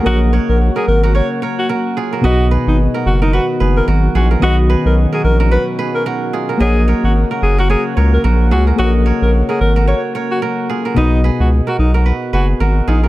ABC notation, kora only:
X:1
M:4/4
L:1/16
Q:"Swing 16ths" 1/4=110
K:Blyd
V:1 name="Kora"
[Ad] z [Ac] z2 [FA] z [FA] [Ac] z [Ac] z [FA] z [EG] [FA] | [Bd] z [GB] z2 [FA] z [FA] [FB] z [GB] z [FA] z [EG] [FA] | [Bd] z [GB] z2 [FA] z [FA] [FB] z [GB] z [FA] z [EG] [FA] | [Ad] z [Ac] z2 [FA] z [FA] [Ac] z [Ac] z [FA] z [EG] [FA] |
[Ad] z [Ac] z2 [FA] z [FA] [Ac] z [Ac] z [FA] z [EG] [FA] | [Bd] z [GB] z2 [FA] z [FA] [FB] z [GB] z [FA] z [EG] [FA] |]